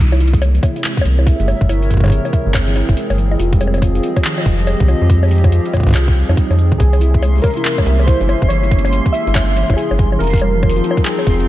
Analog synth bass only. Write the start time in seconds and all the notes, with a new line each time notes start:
0.00 C2
1.05 C2
1.40 G1
1.61 G1
2.46 G1
2.89 G1
3.10 G1
3.39 F1
4.46 F1
4.80 C2
5.02 F2
5.87 C2
6.29 F2
6.50 F2
6.80 C2
7.86 C2
8.21 G1
8.42 G1
9.27 G1
9.70 G1
9.91 G1
10.20 F1
11.27 F1